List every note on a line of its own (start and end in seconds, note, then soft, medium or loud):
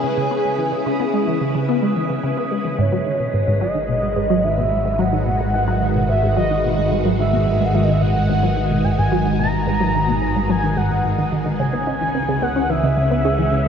0.00 2.79 C#3 medium
0.00 0.13 C#3 medium
0.00 4.56 C#4 medium
0.00 2.79 E4 medium
0.00 2.24 G#4 loud
0.00 11.60 B4 medium
0.00 2.78 D#6 medium
0.17 0.27 C#3 medium
0.31 0.37 B3 loud
0.45 0.54 G#3 medium
0.59 0.64 E3 medium
0.72 0.82 C#3 medium
0.86 0.96 C#3 loud
1.00 1.06 B3 medium
1.14 1.23 G#3 medium
1.27 1.33 E3 medium
1.41 1.51 C#3 medium
1.55 1.64 C#3 loud
1.69 1.74 B3 loud
1.82 1.92 G#3 medium
1.96 2.02 E3 medium
2.10 2.19 C#3 medium
2.24 2.33 C#3 medium
2.37 2.43 B3 loud
2.51 2.61 G#3 medium
2.65 2.71 E3 medium
2.78 11.57 G#1 medium
2.78 2.88 G#2 loud
2.78 11.60 G#3 medium
2.78 3.58 C#5 medium
2.78 13.68 D#6 medium
2.92 2.98 F#3 loud
3.06 3.16 D#3 medium
3.12 11.60 D#3 medium
3.20 3.26 B2 medium
3.34 3.43 G#2 medium
3.47 3.57 G#2 loud
3.61 3.67 F#3 loud
3.61 4.45 D#5 loud
3.75 3.84 D#3 medium
3.89 3.95 B2 medium
3.89 12.37 F#4 medium
4.02 4.12 G#2 medium
4.16 4.26 G#2 loud
4.30 4.36 F#3 loud
4.44 4.53 D#3 medium
4.44 5.00 E5 loud
4.58 4.63 B2 medium
4.71 4.81 G#2 medium
4.85 4.95 G#2 loud
4.99 5.05 F#3 loud
4.99 6.08 F#5 loud
5.13 5.22 D#3 medium
5.26 5.32 B2 medium
5.40 5.50 G#2 medium
5.54 5.63 G#2 loud
5.68 5.73 F#3 loud
5.82 5.91 D#3 medium
5.95 6.01 B2 medium
6.09 6.19 G#2 medium
6.09 6.35 E5 loud
6.23 6.32 G#2 loud
6.37 6.42 F#3 loud
6.37 6.88 D#5 medium
6.50 6.60 D#3 medium
6.64 6.70 B2 medium
6.78 6.87 G#2 medium
6.92 7.01 G#2 loud
7.05 7.11 F#3 medium
7.19 7.29 D#3 medium
7.19 7.67 E5 medium
7.33 7.39 B2 medium
7.47 7.56 G#2 medium
7.61 7.70 G#2 loud
7.65 7.76 F#5 medium
7.74 7.80 F#3 loud
7.74 7.85 E5 medium
7.83 7.94 D#5 medium
7.88 7.98 D#3 medium
7.92 8.03 E5 medium
8.02 8.07 B2 medium
8.02 8.86 F#5 loud
8.16 8.25 G#2 medium
8.29 8.39 G#2 loud
8.43 8.49 F#3 loud
8.57 8.66 D#3 medium
8.71 8.76 B2 medium
8.84 8.94 G#2 medium
8.84 8.93 G#5 loud
8.91 9.00 F#5 medium
8.98 9.08 G#2 medium
8.98 9.39 G#5 loud
9.12 9.18 F#3 loud
9.26 9.35 D#3 medium
9.39 9.45 B2 medium
9.39 10.51 A#5 loud
9.53 9.63 G#2 medium
9.67 9.76 G#2 loud
9.81 9.86 F#3 medium
9.94 10.04 D#3 medium
10.08 10.14 B2 medium
10.22 10.31 G#2 medium
10.36 10.45 G#2 loud
10.49 10.55 F#3 loud
10.49 10.79 G#5 loud
10.63 10.73 D#3 medium
10.77 10.86 G#2 loud
10.77 11.32 F#5 medium
10.91 11.00 G#2 medium
11.05 11.14 G#2 medium
11.18 11.28 D#3 loud
11.32 11.42 D#3 loud
11.46 11.55 D#3 loud
11.60 13.68 C#2 medium
11.60 11.69 C#3 loud
11.60 13.68 C#3 medium
11.60 12.44 G#5 medium
11.73 11.79 B3 loud
11.73 11.83 B4 medium
11.87 11.93 C#4 loud
11.87 13.68 B4 medium
11.87 11.97 D#5 medium
12.01 12.07 E3 medium
12.01 13.68 C#4 medium
12.15 12.24 C#3 medium
12.15 12.25 B4 medium
12.25 12.38 C#3 loud
12.25 13.68 E4 medium
12.25 12.39 G#4 medium
12.42 12.48 B3 loud
12.42 12.52 G#4 medium
12.42 12.71 F#5 medium
12.56 12.62 C#4 loud
12.70 12.75 E3 medium
12.70 12.80 B4 medium
12.70 13.68 E5 loud
12.83 12.93 C#3 medium
12.83 12.94 D#5 medium
12.97 13.07 C#3 loud
13.11 13.17 B3 loud
13.11 13.21 B4 medium
13.25 13.30 C#4 loud
13.25 13.35 G#4 medium
13.39 13.44 E3 medium
13.39 13.49 G#4 medium
13.52 13.62 C#3 medium